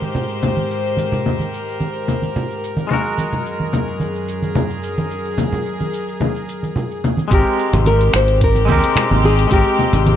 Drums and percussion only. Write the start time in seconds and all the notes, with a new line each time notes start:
0.02 high conga, shaker
0.15 low conga, shaker
0.30 shaker
0.43 low conga, shaker
0.57 high conga, shaker
0.71 shaker
0.85 shaker
0.97 high conga, shaker
1.12 low conga, shaker
1.26 low conga, shaker
1.39 high conga, shaker
1.54 shaker
1.68 shaker
1.80 high conga, shaker
1.96 shaker
2.08 low conga, shaker
2.22 high conga, shaker
2.36 low conga, shaker
2.51 shaker
2.64 shaker
2.77 high conga, shaker
2.91 low conga, shaker
3.06 shaker
3.18 high conga, shaker
3.33 low conga, shaker
3.46 shaker
3.60 high conga
3.73 low conga, shaker
3.88 shaker
4.00 high conga, shaker
4.15 shaker
4.28 shaker
4.42 high conga, shaker
4.55 low conga, shaker
4.70 shaker
4.83 shaker
4.98 high conga, shaker
5.11 shaker
5.25 shaker
5.38 high conga, low conga, shaker
5.52 low conga, shaker
5.66 shaker
5.81 high conga, shaker
5.94 shaker
6.08 shaker
6.20 high conga, low conga, shaker
6.36 shaker
6.49 shaker
6.63 high conga, shaker
6.76 low conga, shaker
6.91 shaker
7.04 low conga, shaker
7.17 high conga, shaker
7.31 kick, closed hi-hat, shaker
7.46 shaker
7.59 shaker
7.73 closed hi-hat, low conga, shaker
7.85 closed hi-hat, high conga, shaker
8.01 closed hi-hat
8.14 finger snap, shaker
8.28 closed hi-hat, shaker
8.41 kick, closed hi-hat, shaker
8.55 closed hi-hat, high conga, shaker
8.69 kick, low conga, shaker
8.84 closed hi-hat, shaker
8.96 finger snap, closed hi-hat, low conga, shaker
9.11 low conga, shaker
9.24 high conga, shaker
9.39 closed hi-hat, shaker
9.51 kick, closed hi-hat, shaker
9.66 shaker
9.79 low conga, shaker
9.93 closed hi-hat, low conga, shaker
10.06 closed hi-hat, high conga, low conga, shaker